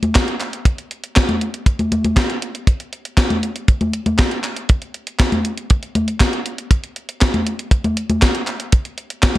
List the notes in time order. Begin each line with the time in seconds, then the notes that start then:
0.03 closed hi-hat, high conga
0.15 kick, snare, clap, closed hi-hat
0.28 closed hi-hat
0.41 clap, closed hi-hat
0.53 closed hi-hat
0.65 kick, closed hi-hat
0.78 closed hi-hat
0.91 closed hi-hat
1.04 closed hi-hat
1.16 kick, snare, clap, closed hi-hat
1.29 closed hi-hat, high conga
1.41 closed hi-hat
1.54 closed hi-hat
1.66 kick, closed hi-hat
1.79 closed hi-hat, high conga
1.92 closed hi-hat, high conga
2.04 closed hi-hat, high conga
2.17 kick, snare, clap, closed hi-hat
2.30 closed hi-hat
2.42 closed hi-hat
2.55 closed hi-hat
2.67 kick, closed hi-hat
2.80 closed hi-hat
2.93 closed hi-hat
3.05 closed hi-hat
3.17 kick, snare, clap, closed hi-hat
3.30 closed hi-hat, high conga
3.43 closed hi-hat
3.56 closed hi-hat
3.68 kick, closed hi-hat
3.81 closed hi-hat, high conga
3.93 closed hi-hat
4.06 closed hi-hat, high conga
4.19 kick, snare, clap, closed hi-hat
4.31 closed hi-hat
4.44 clap, closed hi-hat
4.56 closed hi-hat
4.69 kick, closed hi-hat
4.82 closed hi-hat
4.94 closed hi-hat
5.07 closed hi-hat
5.20 kick, snare, clap, closed hi-hat
5.32 closed hi-hat, high conga
5.45 closed hi-hat
5.57 closed hi-hat
5.70 kick, closed hi-hat
5.83 closed hi-hat
5.95 closed hi-hat, high conga
6.08 closed hi-hat
6.20 kick, snare, clap, closed hi-hat
6.33 closed hi-hat
6.46 closed hi-hat
6.58 closed hi-hat
6.71 kick, closed hi-hat
6.84 closed hi-hat
6.96 closed hi-hat
7.09 closed hi-hat
7.21 kick, snare, clap, closed hi-hat
7.34 closed hi-hat, high conga
7.47 closed hi-hat
7.59 closed hi-hat
7.71 kick, closed hi-hat
7.84 closed hi-hat, high conga
7.97 closed hi-hat
8.10 closed hi-hat, high conga
8.22 kick, snare, clap, closed hi-hat
8.35 closed hi-hat
8.47 clap, closed hi-hat
8.60 closed hi-hat
8.72 kick, closed hi-hat
8.85 closed hi-hat
8.98 closed hi-hat
9.10 closed hi-hat
9.23 kick, snare, clap, closed hi-hat